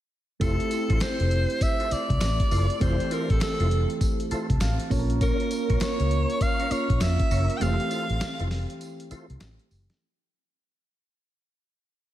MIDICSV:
0, 0, Header, 1, 7, 480
1, 0, Start_track
1, 0, Key_signature, -1, "major"
1, 0, Tempo, 600000
1, 329, Time_signature, 4, 2, 24, 8
1, 9708, End_track
2, 0, Start_track
2, 0, Title_t, "Alto saxophone"
2, 0, Program_c, 0, 65
2, 337, Note_on_c, 0, 69, 92
2, 816, Note_on_c, 0, 72, 109
2, 828, Note_off_c, 0, 69, 0
2, 1299, Note_on_c, 0, 76, 106
2, 1311, Note_off_c, 0, 72, 0
2, 1538, Note_on_c, 0, 74, 102
2, 1550, Note_off_c, 0, 76, 0
2, 2261, Note_on_c, 0, 72, 91
2, 2273, Note_off_c, 0, 74, 0
2, 2502, Note_on_c, 0, 70, 88
2, 2514, Note_off_c, 0, 72, 0
2, 2648, Note_on_c, 0, 69, 83
2, 2660, Note_off_c, 0, 70, 0
2, 2734, Note_off_c, 0, 69, 0
2, 2740, Note_on_c, 0, 69, 86
2, 3182, Note_off_c, 0, 69, 0
2, 4180, Note_on_c, 0, 70, 93
2, 4660, Note_on_c, 0, 73, 107
2, 4672, Note_off_c, 0, 70, 0
2, 5138, Note_on_c, 0, 77, 112
2, 5150, Note_off_c, 0, 73, 0
2, 5375, Note_on_c, 0, 73, 97
2, 5387, Note_off_c, 0, 77, 0
2, 5612, Note_off_c, 0, 73, 0
2, 5617, Note_on_c, 0, 76, 97
2, 6057, Note_on_c, 0, 79, 76
2, 6069, Note_off_c, 0, 76, 0
2, 6096, Note_on_c, 0, 77, 100
2, 6108, Note_off_c, 0, 79, 0
2, 6812, Note_off_c, 0, 77, 0
2, 9708, End_track
3, 0, Start_track
3, 0, Title_t, "Tonewheel organ"
3, 0, Program_c, 1, 16
3, 329, Note_on_c, 1, 64, 100
3, 330, Note_on_c, 1, 65, 84
3, 332, Note_on_c, 1, 69, 86
3, 334, Note_on_c, 1, 72, 102
3, 453, Note_off_c, 1, 64, 0
3, 453, Note_off_c, 1, 65, 0
3, 454, Note_off_c, 1, 69, 0
3, 455, Note_off_c, 1, 72, 0
3, 718, Note_on_c, 1, 64, 74
3, 720, Note_on_c, 1, 65, 72
3, 722, Note_on_c, 1, 69, 74
3, 723, Note_on_c, 1, 72, 83
3, 793, Note_off_c, 1, 64, 0
3, 794, Note_off_c, 1, 65, 0
3, 795, Note_off_c, 1, 69, 0
3, 796, Note_off_c, 1, 72, 0
3, 1439, Note_on_c, 1, 64, 80
3, 1440, Note_on_c, 1, 65, 71
3, 1442, Note_on_c, 1, 69, 67
3, 1443, Note_on_c, 1, 72, 78
3, 1513, Note_off_c, 1, 64, 0
3, 1514, Note_off_c, 1, 65, 0
3, 1515, Note_off_c, 1, 69, 0
3, 1515, Note_off_c, 1, 72, 0
3, 2010, Note_on_c, 1, 64, 78
3, 2011, Note_on_c, 1, 65, 72
3, 2013, Note_on_c, 1, 69, 72
3, 2014, Note_on_c, 1, 72, 85
3, 2133, Note_off_c, 1, 64, 0
3, 2134, Note_off_c, 1, 65, 0
3, 2135, Note_off_c, 1, 69, 0
3, 2135, Note_off_c, 1, 72, 0
3, 2248, Note_on_c, 1, 64, 92
3, 2250, Note_on_c, 1, 65, 85
3, 2251, Note_on_c, 1, 69, 81
3, 2253, Note_on_c, 1, 72, 105
3, 2372, Note_off_c, 1, 64, 0
3, 2373, Note_off_c, 1, 65, 0
3, 2374, Note_off_c, 1, 69, 0
3, 2375, Note_off_c, 1, 72, 0
3, 2489, Note_on_c, 1, 64, 79
3, 2491, Note_on_c, 1, 65, 73
3, 2492, Note_on_c, 1, 69, 71
3, 2494, Note_on_c, 1, 72, 84
3, 2613, Note_off_c, 1, 64, 0
3, 2614, Note_off_c, 1, 65, 0
3, 2614, Note_off_c, 1, 69, 0
3, 2615, Note_off_c, 1, 72, 0
3, 2879, Note_on_c, 1, 64, 80
3, 2881, Note_on_c, 1, 65, 76
3, 2882, Note_on_c, 1, 69, 74
3, 2883, Note_on_c, 1, 72, 87
3, 2953, Note_off_c, 1, 64, 0
3, 2954, Note_off_c, 1, 65, 0
3, 2955, Note_off_c, 1, 69, 0
3, 2955, Note_off_c, 1, 72, 0
3, 3448, Note_on_c, 1, 64, 80
3, 3450, Note_on_c, 1, 65, 66
3, 3452, Note_on_c, 1, 69, 76
3, 3453, Note_on_c, 1, 72, 86
3, 3572, Note_off_c, 1, 64, 0
3, 3573, Note_off_c, 1, 65, 0
3, 3574, Note_off_c, 1, 69, 0
3, 3575, Note_off_c, 1, 72, 0
3, 4168, Note_on_c, 1, 61, 94
3, 4170, Note_on_c, 1, 65, 91
3, 4171, Note_on_c, 1, 70, 93
3, 4173, Note_on_c, 1, 73, 103
3, 4292, Note_off_c, 1, 61, 0
3, 4293, Note_off_c, 1, 65, 0
3, 4294, Note_off_c, 1, 70, 0
3, 4294, Note_off_c, 1, 73, 0
3, 4556, Note_on_c, 1, 61, 76
3, 4558, Note_on_c, 1, 65, 70
3, 4560, Note_on_c, 1, 70, 76
3, 4562, Note_on_c, 1, 73, 84
3, 4632, Note_off_c, 1, 61, 0
3, 4633, Note_off_c, 1, 65, 0
3, 4634, Note_off_c, 1, 70, 0
3, 4635, Note_off_c, 1, 73, 0
3, 5277, Note_on_c, 1, 61, 79
3, 5278, Note_on_c, 1, 65, 70
3, 5280, Note_on_c, 1, 70, 71
3, 5281, Note_on_c, 1, 73, 85
3, 5352, Note_off_c, 1, 61, 0
3, 5353, Note_off_c, 1, 65, 0
3, 5354, Note_off_c, 1, 70, 0
3, 5354, Note_off_c, 1, 73, 0
3, 5847, Note_on_c, 1, 61, 81
3, 5848, Note_on_c, 1, 65, 76
3, 5850, Note_on_c, 1, 70, 78
3, 5852, Note_on_c, 1, 73, 83
3, 5972, Note_off_c, 1, 61, 0
3, 5972, Note_off_c, 1, 65, 0
3, 5973, Note_off_c, 1, 70, 0
3, 5974, Note_off_c, 1, 73, 0
3, 6087, Note_on_c, 1, 64, 94
3, 6088, Note_on_c, 1, 65, 93
3, 6090, Note_on_c, 1, 69, 88
3, 6091, Note_on_c, 1, 72, 100
3, 6212, Note_off_c, 1, 64, 0
3, 6212, Note_off_c, 1, 65, 0
3, 6213, Note_off_c, 1, 69, 0
3, 6214, Note_off_c, 1, 72, 0
3, 6328, Note_on_c, 1, 64, 77
3, 6329, Note_on_c, 1, 65, 76
3, 6331, Note_on_c, 1, 69, 75
3, 6332, Note_on_c, 1, 72, 88
3, 6452, Note_off_c, 1, 64, 0
3, 6453, Note_off_c, 1, 65, 0
3, 6453, Note_off_c, 1, 69, 0
3, 6454, Note_off_c, 1, 72, 0
3, 6718, Note_on_c, 1, 64, 86
3, 6719, Note_on_c, 1, 65, 73
3, 6721, Note_on_c, 1, 69, 78
3, 6723, Note_on_c, 1, 72, 88
3, 6793, Note_off_c, 1, 64, 0
3, 6794, Note_off_c, 1, 65, 0
3, 6794, Note_off_c, 1, 69, 0
3, 6795, Note_off_c, 1, 72, 0
3, 7288, Note_on_c, 1, 64, 78
3, 7290, Note_on_c, 1, 65, 74
3, 7291, Note_on_c, 1, 69, 70
3, 7293, Note_on_c, 1, 72, 88
3, 7412, Note_off_c, 1, 64, 0
3, 7413, Note_off_c, 1, 65, 0
3, 7414, Note_off_c, 1, 69, 0
3, 7414, Note_off_c, 1, 72, 0
3, 9708, End_track
4, 0, Start_track
4, 0, Title_t, "Synth keys"
4, 0, Program_c, 2, 88
4, 320, Note_on_c, 2, 57, 73
4, 326, Note_on_c, 2, 60, 63
4, 333, Note_on_c, 2, 64, 64
4, 339, Note_on_c, 2, 67, 74
4, 474, Control_c, 2, 64, 127
4, 2212, Note_off_c, 2, 57, 0
4, 2215, Note_off_c, 2, 60, 0
4, 2219, Note_off_c, 2, 64, 0
4, 2222, Note_off_c, 2, 67, 0
4, 2240, Note_on_c, 2, 57, 73
4, 2247, Note_on_c, 2, 60, 63
4, 2253, Note_on_c, 2, 52, 64
4, 2258, Note_on_c, 2, 67, 70
4, 3450, Note_on_c, 2, 81, 76
4, 3673, Note_off_c, 2, 81, 0
4, 3691, Note_on_c, 2, 77, 77
4, 3892, Note_off_c, 2, 57, 0
4, 3896, Note_off_c, 2, 60, 0
4, 3899, Note_off_c, 2, 52, 0
4, 3902, Note_off_c, 2, 67, 0
4, 3913, Note_off_c, 2, 77, 0
4, 3921, Note_on_c, 2, 58, 89
4, 3928, Note_on_c, 2, 61, 81
4, 3931, Note_on_c, 2, 73, 82
4, 3934, Note_on_c, 2, 65, 80
4, 3939, Control_c, 2, 64, 0
4, 3941, Note_on_c, 2, 69, 76
4, 3993, Note_on_c, 2, 70, 94
4, 4000, Note_off_c, 2, 69, 0
4, 4096, Control_c, 2, 64, 127
4, 4153, Note_off_c, 2, 73, 0
4, 5336, Note_off_c, 2, 58, 0
4, 5340, Note_off_c, 2, 61, 0
4, 5343, Note_off_c, 2, 65, 0
4, 5364, Note_off_c, 2, 70, 0
4, 5365, Note_on_c, 2, 58, 56
4, 5368, Note_on_c, 2, 61, 50
4, 5372, Note_on_c, 2, 65, 49
4, 5374, Note_on_c, 2, 70, 63
4, 6079, Note_on_c, 2, 57, 63
4, 6086, Note_on_c, 2, 60, 58
4, 6087, Note_off_c, 2, 58, 0
4, 6089, Note_off_c, 2, 61, 0
4, 6090, Note_off_c, 2, 65, 0
4, 6092, Note_off_c, 2, 70, 0
4, 6092, Note_on_c, 2, 52, 60
4, 6099, Control_c, 2, 64, 0
4, 6099, Note_on_c, 2, 67, 74
4, 6246, Control_c, 2, 64, 127
4, 7972, Note_off_c, 2, 57, 0
4, 7975, Note_off_c, 2, 60, 0
4, 7979, Note_off_c, 2, 52, 0
4, 7982, Note_off_c, 2, 67, 0
4, 8020, Control_c, 2, 64, 0
4, 9708, End_track
5, 0, Start_track
5, 0, Title_t, "Fingered electric bass"
5, 0, Program_c, 3, 33
5, 329, Note_on_c, 3, 29, 99
5, 449, Note_off_c, 3, 29, 0
5, 720, Note_on_c, 3, 33, 97
5, 791, Note_off_c, 3, 33, 0
5, 960, Note_on_c, 3, 29, 91
5, 1152, Note_off_c, 3, 29, 0
5, 1679, Note_on_c, 3, 36, 94
5, 1751, Note_off_c, 3, 36, 0
5, 1772, Note_on_c, 3, 33, 95
5, 1891, Note_off_c, 3, 33, 0
5, 2011, Note_on_c, 3, 30, 91
5, 2130, Note_off_c, 3, 30, 0
5, 2249, Note_on_c, 3, 29, 100
5, 2369, Note_off_c, 3, 29, 0
5, 2639, Note_on_c, 3, 33, 97
5, 2711, Note_off_c, 3, 33, 0
5, 2879, Note_on_c, 3, 29, 97
5, 3071, Note_off_c, 3, 29, 0
5, 3598, Note_on_c, 3, 36, 90
5, 3671, Note_off_c, 3, 36, 0
5, 3689, Note_on_c, 3, 33, 99
5, 3809, Note_off_c, 3, 33, 0
5, 3927, Note_on_c, 3, 34, 109
5, 4240, Note_off_c, 3, 34, 0
5, 4558, Note_on_c, 3, 34, 80
5, 4631, Note_off_c, 3, 34, 0
5, 4799, Note_on_c, 3, 37, 83
5, 4991, Note_off_c, 3, 37, 0
5, 5518, Note_on_c, 3, 34, 89
5, 5590, Note_off_c, 3, 34, 0
5, 5607, Note_on_c, 3, 41, 101
5, 5728, Note_off_c, 3, 41, 0
5, 5848, Note_on_c, 3, 30, 91
5, 5969, Note_off_c, 3, 30, 0
5, 6087, Note_on_c, 3, 29, 98
5, 6208, Note_off_c, 3, 29, 0
5, 6479, Note_on_c, 3, 33, 97
5, 6551, Note_off_c, 3, 33, 0
5, 6719, Note_on_c, 3, 29, 90
5, 6911, Note_off_c, 3, 29, 0
5, 7440, Note_on_c, 3, 36, 88
5, 7512, Note_off_c, 3, 36, 0
5, 7770, Note_on_c, 3, 30, 88
5, 7890, Note_off_c, 3, 30, 0
5, 9708, End_track
6, 0, Start_track
6, 0, Title_t, "Muted fingered electric bass strokes"
6, 1532, Note_on_c, 9, 29, 53
6, 1612, Note_off_c, 9, 29, 0
6, 3451, Note_on_c, 9, 29, 47
6, 3531, Note_off_c, 9, 29, 0
6, 5367, Note_on_c, 9, 29, 53
6, 5447, Note_off_c, 9, 29, 0
6, 7289, Note_on_c, 9, 29, 48
6, 7369, Note_off_c, 9, 29, 0
6, 9708, End_track
7, 0, Start_track
7, 0, Title_t, "Drums"
7, 329, Note_on_c, 9, 36, 123
7, 329, Note_on_c, 9, 42, 74
7, 329, Note_on_c, 9, 54, 70
7, 409, Note_off_c, 9, 36, 0
7, 409, Note_off_c, 9, 42, 0
7, 409, Note_off_c, 9, 54, 0
7, 481, Note_on_c, 9, 42, 54
7, 561, Note_off_c, 9, 42, 0
7, 567, Note_on_c, 9, 54, 68
7, 568, Note_on_c, 9, 42, 77
7, 647, Note_off_c, 9, 54, 0
7, 648, Note_off_c, 9, 42, 0
7, 718, Note_on_c, 9, 42, 53
7, 719, Note_on_c, 9, 36, 96
7, 798, Note_off_c, 9, 42, 0
7, 799, Note_off_c, 9, 36, 0
7, 808, Note_on_c, 9, 39, 94
7, 808, Note_on_c, 9, 42, 74
7, 808, Note_on_c, 9, 54, 89
7, 809, Note_on_c, 9, 38, 118
7, 888, Note_off_c, 9, 39, 0
7, 888, Note_off_c, 9, 42, 0
7, 888, Note_off_c, 9, 54, 0
7, 889, Note_off_c, 9, 38, 0
7, 958, Note_on_c, 9, 42, 55
7, 1038, Note_off_c, 9, 42, 0
7, 1049, Note_on_c, 9, 42, 68
7, 1129, Note_off_c, 9, 42, 0
7, 1199, Note_on_c, 9, 42, 57
7, 1279, Note_off_c, 9, 42, 0
7, 1287, Note_on_c, 9, 36, 98
7, 1288, Note_on_c, 9, 42, 75
7, 1288, Note_on_c, 9, 54, 69
7, 1367, Note_off_c, 9, 36, 0
7, 1368, Note_off_c, 9, 42, 0
7, 1368, Note_off_c, 9, 54, 0
7, 1439, Note_on_c, 9, 42, 48
7, 1519, Note_off_c, 9, 42, 0
7, 1529, Note_on_c, 9, 54, 58
7, 1530, Note_on_c, 9, 42, 77
7, 1609, Note_off_c, 9, 54, 0
7, 1610, Note_off_c, 9, 42, 0
7, 1679, Note_on_c, 9, 36, 90
7, 1681, Note_on_c, 9, 42, 57
7, 1759, Note_off_c, 9, 36, 0
7, 1761, Note_off_c, 9, 42, 0
7, 1768, Note_on_c, 9, 38, 114
7, 1768, Note_on_c, 9, 54, 93
7, 1769, Note_on_c, 9, 42, 80
7, 1770, Note_on_c, 9, 39, 93
7, 1848, Note_off_c, 9, 38, 0
7, 1848, Note_off_c, 9, 54, 0
7, 1849, Note_off_c, 9, 42, 0
7, 1850, Note_off_c, 9, 39, 0
7, 1919, Note_on_c, 9, 36, 105
7, 1919, Note_on_c, 9, 42, 58
7, 1999, Note_off_c, 9, 36, 0
7, 1999, Note_off_c, 9, 42, 0
7, 2010, Note_on_c, 9, 46, 72
7, 2011, Note_on_c, 9, 54, 62
7, 2090, Note_off_c, 9, 46, 0
7, 2091, Note_off_c, 9, 54, 0
7, 2159, Note_on_c, 9, 42, 53
7, 2239, Note_off_c, 9, 42, 0
7, 2248, Note_on_c, 9, 42, 73
7, 2248, Note_on_c, 9, 54, 74
7, 2249, Note_on_c, 9, 36, 127
7, 2328, Note_off_c, 9, 42, 0
7, 2328, Note_off_c, 9, 54, 0
7, 2329, Note_off_c, 9, 36, 0
7, 2401, Note_on_c, 9, 42, 53
7, 2481, Note_off_c, 9, 42, 0
7, 2488, Note_on_c, 9, 42, 81
7, 2488, Note_on_c, 9, 54, 71
7, 2568, Note_off_c, 9, 42, 0
7, 2568, Note_off_c, 9, 54, 0
7, 2639, Note_on_c, 9, 42, 55
7, 2640, Note_on_c, 9, 36, 95
7, 2719, Note_off_c, 9, 42, 0
7, 2720, Note_off_c, 9, 36, 0
7, 2728, Note_on_c, 9, 39, 95
7, 2729, Note_on_c, 9, 54, 88
7, 2730, Note_on_c, 9, 38, 106
7, 2730, Note_on_c, 9, 42, 70
7, 2808, Note_off_c, 9, 39, 0
7, 2809, Note_off_c, 9, 54, 0
7, 2810, Note_off_c, 9, 38, 0
7, 2810, Note_off_c, 9, 42, 0
7, 2880, Note_on_c, 9, 42, 54
7, 2960, Note_off_c, 9, 42, 0
7, 2969, Note_on_c, 9, 42, 68
7, 3049, Note_off_c, 9, 42, 0
7, 3118, Note_on_c, 9, 42, 56
7, 3198, Note_off_c, 9, 42, 0
7, 3207, Note_on_c, 9, 36, 104
7, 3208, Note_on_c, 9, 42, 76
7, 3208, Note_on_c, 9, 54, 72
7, 3287, Note_off_c, 9, 36, 0
7, 3288, Note_off_c, 9, 42, 0
7, 3288, Note_off_c, 9, 54, 0
7, 3359, Note_on_c, 9, 42, 52
7, 3439, Note_off_c, 9, 42, 0
7, 3448, Note_on_c, 9, 42, 78
7, 3448, Note_on_c, 9, 54, 61
7, 3528, Note_off_c, 9, 42, 0
7, 3528, Note_off_c, 9, 54, 0
7, 3598, Note_on_c, 9, 36, 101
7, 3600, Note_on_c, 9, 42, 55
7, 3678, Note_off_c, 9, 36, 0
7, 3680, Note_off_c, 9, 42, 0
7, 3686, Note_on_c, 9, 38, 122
7, 3686, Note_on_c, 9, 54, 89
7, 3687, Note_on_c, 9, 42, 83
7, 3688, Note_on_c, 9, 39, 91
7, 3766, Note_off_c, 9, 38, 0
7, 3766, Note_off_c, 9, 54, 0
7, 3767, Note_off_c, 9, 42, 0
7, 3768, Note_off_c, 9, 39, 0
7, 3836, Note_on_c, 9, 42, 62
7, 3916, Note_off_c, 9, 42, 0
7, 3928, Note_on_c, 9, 36, 96
7, 3929, Note_on_c, 9, 46, 68
7, 3929, Note_on_c, 9, 54, 70
7, 4008, Note_off_c, 9, 36, 0
7, 4009, Note_off_c, 9, 46, 0
7, 4009, Note_off_c, 9, 54, 0
7, 4078, Note_on_c, 9, 42, 55
7, 4158, Note_off_c, 9, 42, 0
7, 4168, Note_on_c, 9, 36, 127
7, 4168, Note_on_c, 9, 42, 72
7, 4168, Note_on_c, 9, 54, 68
7, 4248, Note_off_c, 9, 36, 0
7, 4248, Note_off_c, 9, 42, 0
7, 4248, Note_off_c, 9, 54, 0
7, 4320, Note_on_c, 9, 42, 51
7, 4400, Note_off_c, 9, 42, 0
7, 4406, Note_on_c, 9, 42, 82
7, 4406, Note_on_c, 9, 54, 71
7, 4486, Note_off_c, 9, 42, 0
7, 4486, Note_off_c, 9, 54, 0
7, 4557, Note_on_c, 9, 42, 52
7, 4558, Note_on_c, 9, 36, 99
7, 4637, Note_off_c, 9, 42, 0
7, 4638, Note_off_c, 9, 36, 0
7, 4646, Note_on_c, 9, 39, 92
7, 4646, Note_on_c, 9, 54, 91
7, 4647, Note_on_c, 9, 42, 73
7, 4648, Note_on_c, 9, 38, 109
7, 4726, Note_off_c, 9, 39, 0
7, 4726, Note_off_c, 9, 54, 0
7, 4727, Note_off_c, 9, 42, 0
7, 4728, Note_off_c, 9, 38, 0
7, 4797, Note_on_c, 9, 42, 59
7, 4877, Note_off_c, 9, 42, 0
7, 4888, Note_on_c, 9, 42, 69
7, 4968, Note_off_c, 9, 42, 0
7, 5038, Note_on_c, 9, 42, 57
7, 5118, Note_off_c, 9, 42, 0
7, 5126, Note_on_c, 9, 36, 97
7, 5126, Note_on_c, 9, 54, 72
7, 5127, Note_on_c, 9, 42, 69
7, 5206, Note_off_c, 9, 36, 0
7, 5206, Note_off_c, 9, 54, 0
7, 5207, Note_off_c, 9, 42, 0
7, 5277, Note_on_c, 9, 42, 55
7, 5357, Note_off_c, 9, 42, 0
7, 5366, Note_on_c, 9, 54, 59
7, 5367, Note_on_c, 9, 42, 81
7, 5446, Note_off_c, 9, 54, 0
7, 5447, Note_off_c, 9, 42, 0
7, 5518, Note_on_c, 9, 36, 99
7, 5519, Note_on_c, 9, 42, 55
7, 5598, Note_off_c, 9, 36, 0
7, 5599, Note_off_c, 9, 42, 0
7, 5606, Note_on_c, 9, 38, 127
7, 5606, Note_on_c, 9, 54, 91
7, 5608, Note_on_c, 9, 42, 86
7, 5609, Note_on_c, 9, 39, 90
7, 5686, Note_off_c, 9, 38, 0
7, 5686, Note_off_c, 9, 54, 0
7, 5688, Note_off_c, 9, 42, 0
7, 5689, Note_off_c, 9, 39, 0
7, 5756, Note_on_c, 9, 42, 55
7, 5757, Note_on_c, 9, 36, 110
7, 5836, Note_off_c, 9, 42, 0
7, 5837, Note_off_c, 9, 36, 0
7, 5849, Note_on_c, 9, 46, 69
7, 5849, Note_on_c, 9, 54, 69
7, 5929, Note_off_c, 9, 46, 0
7, 5929, Note_off_c, 9, 54, 0
7, 5998, Note_on_c, 9, 42, 55
7, 6078, Note_off_c, 9, 42, 0
7, 6088, Note_on_c, 9, 42, 74
7, 6088, Note_on_c, 9, 54, 69
7, 6168, Note_off_c, 9, 42, 0
7, 6168, Note_off_c, 9, 54, 0
7, 6240, Note_on_c, 9, 42, 53
7, 6320, Note_off_c, 9, 42, 0
7, 6326, Note_on_c, 9, 54, 69
7, 6327, Note_on_c, 9, 42, 72
7, 6406, Note_off_c, 9, 54, 0
7, 6407, Note_off_c, 9, 42, 0
7, 6477, Note_on_c, 9, 42, 52
7, 6557, Note_off_c, 9, 42, 0
7, 6567, Note_on_c, 9, 54, 94
7, 6568, Note_on_c, 9, 38, 121
7, 6568, Note_on_c, 9, 39, 91
7, 6568, Note_on_c, 9, 42, 78
7, 6647, Note_off_c, 9, 54, 0
7, 6648, Note_off_c, 9, 38, 0
7, 6648, Note_off_c, 9, 39, 0
7, 6648, Note_off_c, 9, 42, 0
7, 6717, Note_on_c, 9, 42, 63
7, 6797, Note_off_c, 9, 42, 0
7, 6808, Note_on_c, 9, 38, 64
7, 6808, Note_on_c, 9, 46, 67
7, 6888, Note_off_c, 9, 38, 0
7, 6888, Note_off_c, 9, 46, 0
7, 6959, Note_on_c, 9, 42, 57
7, 7039, Note_off_c, 9, 42, 0
7, 7047, Note_on_c, 9, 42, 72
7, 7047, Note_on_c, 9, 54, 67
7, 7127, Note_off_c, 9, 42, 0
7, 7127, Note_off_c, 9, 54, 0
7, 7199, Note_on_c, 9, 42, 52
7, 7279, Note_off_c, 9, 42, 0
7, 7286, Note_on_c, 9, 54, 61
7, 7287, Note_on_c, 9, 42, 76
7, 7366, Note_off_c, 9, 54, 0
7, 7367, Note_off_c, 9, 42, 0
7, 7439, Note_on_c, 9, 42, 61
7, 7519, Note_off_c, 9, 42, 0
7, 7526, Note_on_c, 9, 38, 124
7, 7526, Note_on_c, 9, 54, 92
7, 7527, Note_on_c, 9, 42, 75
7, 7530, Note_on_c, 9, 39, 102
7, 7606, Note_off_c, 9, 38, 0
7, 7606, Note_off_c, 9, 54, 0
7, 7607, Note_off_c, 9, 42, 0
7, 7610, Note_off_c, 9, 39, 0
7, 7677, Note_on_c, 9, 42, 62
7, 7757, Note_off_c, 9, 42, 0
7, 7769, Note_on_c, 9, 46, 72
7, 7769, Note_on_c, 9, 54, 67
7, 7849, Note_off_c, 9, 46, 0
7, 7849, Note_off_c, 9, 54, 0
7, 7919, Note_on_c, 9, 38, 78
7, 7919, Note_on_c, 9, 42, 51
7, 7999, Note_off_c, 9, 38, 0
7, 7999, Note_off_c, 9, 42, 0
7, 9708, End_track
0, 0, End_of_file